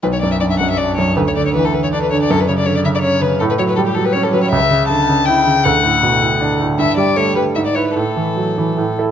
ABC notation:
X:1
M:3/4
L:1/16
Q:1/4=159
K:Bm
V:1 name="Violin"
B c d e d e f e d2 c2 | B c d c B A B c d B c d | A B c d c d e d c2 B2 | A B c B A G A B c A B c |
[K:Amix] e4 a4 g4 | f8- f2 z2 | e2 d2 c2 B2 e d c B | A8- A2 z2 |]
V:2 name="Grand piano" clef=bass
B,,,2 F,,2 G,,2 F,,2 D2 F,,2 | D,,2 D,2 E,2 D,2 D2 D,2 | F,,2 C,2 D,2 C,2 C2 C,2 | A,,2 F,2 G,2 F,2 C2 F,2 |
[K:Amix] C,,2 C,2 D,2 C,2 E2 C,2 | D,,2 A,,2 B,,2 A,,2 D2 A,,2 | G,,2 G,2 A,2 G,2 ^G,,2 [EB]2 | A,,2 E,2 F,2 E,2 A,,2 [EA]2 |]